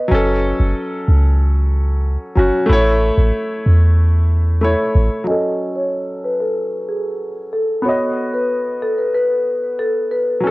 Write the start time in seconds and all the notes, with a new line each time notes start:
0.08 F#1 F#3 C#4
0.15 A4
0.60 F#1
1.08 C#2
2.35 F#1 F#3 C#4 F#4
2.66 A1 A3 E4
2.73 C#5
3.18 A1
3.66 E2
4.61 A3 E4 C#5
4.95 A1
5.24 F#3 C#4 D#5
5.31 A4
5.76 C#5
6.24 B4
6.40 A4
6.89 G#4
7.53 A4
7.82 B3 F#4 C#5
7.89 D#5
8.34 B4
8.82 A4
8.98 B4
9.14 B4
9.79 A4
10.11 B4
10.40 F#3 C#4
10.47 A4